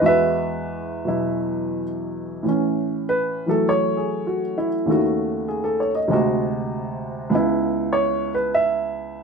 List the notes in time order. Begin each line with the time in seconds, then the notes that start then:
0.01 E2 E3 G#3 F#4
0.06 B4 E5
1.05 B2 F#3 E4
2.43 A2 E3
2.48 C#4
3.09 B4
3.46 E3 F#3 A3 A4
3.69 C#5
3.97 G#4
4.27 F#4
4.58 E4
4.86 D#2 C#3 A3
4.91 F#4
5.48 G#4
5.64 A4
5.80 C#5
5.95 D#5
6.08 D2 C3 G#3
6.13 F#4
7.30 C#2 C#3 B3
7.35 E4
7.93 C#5
8.35 B4
8.54 E5